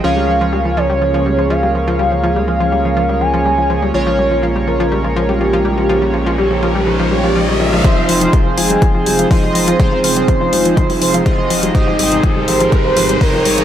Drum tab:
HH |----------------|----------------|----------------|----------------|
BD |----------------|----------------|----------------|----------------|

HH |x-oxx-oxx-oxo-ox|x-oxx-oxxooxx-ox|x-oxx-oxx-oxo-ox|
BD |o---o---o---o---|o---o---o---o---|o---o---o---o---|